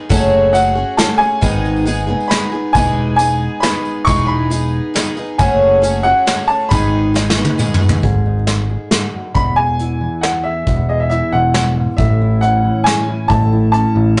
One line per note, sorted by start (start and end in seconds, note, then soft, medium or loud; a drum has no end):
0.00 0.10 B3 soft
0.00 0.10 D#4 medium
0.09 0.82 F#1 medium
0.09 0.54 F#3 medium
0.09 0.52 A3 loud
0.09 0.53 C#4 medium
0.09 0.54 F#4 loud
0.09 0.56 G#4 medium
0.09 kick loud
0.09 closed hi-hat medium
0.09 tambourine medium
0.53 0.76 A3 medium
0.53 0.76 C#4 medium
0.53 0.76 F#4 medium
0.53 0.74 G#4 medium
0.53 0.99 F#5 medium
0.53 closed hi-hat medium
0.53 tambourine medium
0.66 tambourine soft
0.75 0.98 C#4 soft
0.75 0.98 F#4 soft
0.75 0.98 G#4 medium
0.97 1.20 A3 medium
0.97 1.20 C#4 medium
0.97 1.19 F#4 medium
0.97 1.17 G#4 medium
0.97 1.18 A5 medium
0.97 snare medium
0.97 tambourine medium
1.18 1.42 C#4 soft
1.18 1.42 F#4 soft
1.18 1.42 G#4 medium
1.18 2.33 G#5 loud
1.18 tambourine soft
1.41 2.15 G#1 medium
1.41 1.86 G#2 medium
1.41 1.86 D#3 medium
1.41 1.85 G#3 medium
1.41 1.86 B3 medium
1.41 1.87 D#4 medium
1.41 1.87 G#4 medium
1.41 kick loud
1.41 closed hi-hat medium
1.41 tambourine medium
1.65 tambourine soft
1.76 tambourine soft
1.85 2.08 G#3 medium
1.85 2.08 B3 medium
1.85 2.07 D#4 medium
1.85 2.06 G#4 medium
1.85 closed hi-hat medium
1.85 tambourine medium
2.07 2.28 G#3 soft
2.07 2.29 B3 soft
2.07 2.30 D#4 medium
2.07 2.30 G#4 medium
2.21 tambourine soft
2.28 2.52 G#3 medium
2.28 2.53 B3 medium
2.28 2.52 D#4 medium
2.28 2.75 B5 medium
2.28 snare medium
2.28 closed hi-hat medium
2.28 tambourine medium
2.32 2.51 G#4 medium
2.42 tambourine soft
2.52 2.74 G#3 soft
2.52 2.74 B3 soft
2.52 2.75 D#4 soft
2.52 2.74 G#4 soft
2.73 3.47 E1 medium
2.73 3.19 E3 medium
2.73 3.18 G#3 medium
2.73 3.18 B3 medium
2.73 3.19 D#4 medium
2.73 3.21 G#4 medium
2.73 3.15 G#5 medium
2.73 kick loud
2.73 closed hi-hat medium
2.73 tambourine medium
3.16 3.62 G#3 medium
3.16 3.62 B3 medium
3.16 3.63 D#4 medium
3.16 3.63 G#5 medium
3.16 closed hi-hat medium
3.16 tambourine medium
3.21 3.64 G#4 medium
3.31 tambourine soft
3.60 4.07 G#3 medium
3.60 4.06 B3 medium
3.60 4.07 D#4 medium
3.60 4.07 B5 medium
3.60 snare medium
3.60 closed hi-hat medium
3.60 tambourine loud
3.65 4.08 G#4 medium
3.75 tambourine soft
3.85 tambourine soft
4.05 4.79 E1 medium
4.05 4.51 E3 medium
4.05 4.50 G#3 medium
4.05 4.50 B3 medium
4.05 4.51 D#4 medium
4.05 4.29 C#6 loud
4.05 kick loud
4.05 closed hi-hat medium
4.05 tambourine medium
4.09 4.53 G#4 medium
4.26 5.12 B5 medium
4.50 4.93 G#3 medium
4.50 4.94 B3 medium
4.50 4.95 D#4 medium
4.50 4.96 G#4 medium
4.50 closed hi-hat medium
4.50 tambourine medium
4.62 tambourine soft
4.94 5.17 G#3 medium
4.94 5.17 B3 medium
4.94 5.17 D#4 medium
4.94 5.15 G#4 medium
4.94 snare medium
4.94 closed hi-hat medium
4.94 tambourine medium
5.06 tambourine soft
5.17 5.40 B3 soft
5.17 5.40 D#4 medium
5.17 5.39 G#4 medium
5.17 tambourine soft
5.38 6.11 F#1 medium
5.38 5.83 F#3 medium
5.38 5.81 A3 medium
5.38 5.82 C#4 medium
5.38 5.83 F#4 medium
5.38 5.84 G#4 medium
5.38 6.07 G#5 medium
5.38 kick loud
5.38 closed hi-hat medium
5.38 tambourine medium
5.82 6.05 A3 medium
5.82 6.05 C#4 medium
5.82 6.04 F#4 medium
5.82 6.03 G#4 medium
5.82 closed hi-hat medium
5.82 tambourine medium
6.03 6.26 C#4 soft
6.03 6.27 F#4 medium
6.03 6.27 G#4 soft
6.03 6.50 F#5 loud
6.26 6.71 A3 medium
6.26 6.71 C#4 medium
6.26 6.72 F#4 medium
6.26 6.72 G#4 medium
6.26 snare medium
6.26 closed hi-hat medium
6.26 tambourine medium
6.38 tambourine soft
6.47 6.71 A5 loud
6.47 tambourine soft
6.69 7.43 G#1 medium
6.69 7.15 G#2 medium
6.69 7.15 D#3 medium
6.69 7.13 G#3 medium
6.69 7.14 B3 medium
6.69 7.15 D#4 medium
6.69 7.16 G#4 medium
6.69 7.54 B5 medium
6.69 kick loud
6.69 closed hi-hat medium
6.69 tambourine medium
7.14 7.37 G#3 medium
7.14 7.37 B3 medium
7.14 7.36 D#4 medium
7.14 7.35 G#4 medium
7.14 snare medium
7.14 tambourine medium
7.30 snare medium
7.36 7.57 G#3 soft
7.36 7.58 B3 soft
7.36 7.59 D#4 medium
7.36 7.59 G#4 medium
7.45 high tom medium
7.58 7.81 G#3 medium
7.58 7.80 B3 medium
7.58 7.80 D#4 medium
7.58 7.78 G#4 medium
7.58 mid tom medium
7.58 tambourine loud
7.70 tambourine soft
7.74 mid tom loud
7.80 8.04 G#3 soft
7.80 8.03 B3 soft
7.80 8.03 D#4 medium
7.80 8.02 G#4 medium
7.80 tambourine soft
7.89 floor tom medium
7.89 tambourine soft
8.03 8.75 G#1 medium
8.03 8.90 G#2 medium
8.03 8.47 G#4 medium
8.03 kick medium
8.03 closed hi-hat soft
8.26 9.33 D#4 medium
8.47 8.69 G#4 medium
8.47 snare medium
8.47 closed hi-hat soft
8.70 9.33 G#4 medium
8.91 9.13 G#2 medium
8.91 snare medium
8.91 closed hi-hat soft
9.13 9.35 F#2 medium
9.35 10.07 E1 medium
9.35 10.65 E2 medium
9.35 10.65 B3 medium
9.35 9.58 B5 medium
9.35 kick medium
9.35 closed hi-hat medium
9.56 10.44 G#4 medium
9.56 10.25 G#5 medium
9.79 11.11 E4 medium
9.79 closed hi-hat medium
10.00 11.33 E3 medium
10.21 10.45 F#5 medium
10.21 snare medium
10.21 closed hi-hat soft
10.43 10.65 G#4 medium
10.43 10.90 E5 medium
10.66 11.21 E1 medium
10.66 11.55 E2 medium
10.66 11.96 B3 medium
10.66 kick medium
10.66 closed hi-hat soft
10.89 11.96 G#4 medium
10.89 11.00 D#5 medium
11.00 11.08 E5 medium
11.10 12.22 E4 soft
11.10 11.33 E5 medium
11.10 closed hi-hat soft
11.32 11.87 E1 medium
11.32 12.64 E3 medium
11.32 11.73 F#5 medium
11.54 11.77 F#2 medium
11.54 snare medium
11.77 11.99 G#2 medium
11.97 12.70 A1 medium
11.97 13.28 A2 medium
11.97 13.28 A3 medium
11.97 12.43 E5 medium
11.97 kick medium
11.97 closed hi-hat soft
12.22 13.07 E4 medium
12.41 13.28 C#4 medium
12.41 12.87 F#5 medium
12.41 closed hi-hat soft
12.64 13.27 E3 medium
12.84 13.30 G#5 medium
12.84 snare medium
12.84 closed hi-hat soft
13.09 13.51 E4 medium
13.28 13.84 A1 medium
13.28 14.20 A2 medium
13.28 14.20 A3 medium
13.28 13.70 A5 medium
13.28 kick loud
13.28 closed hi-hat soft
13.52 14.20 E4 medium
13.72 14.20 C#4 medium
13.72 14.20 A5 medium
13.72 closed hi-hat medium
13.95 14.14 A1 medium
13.95 14.20 E3 medium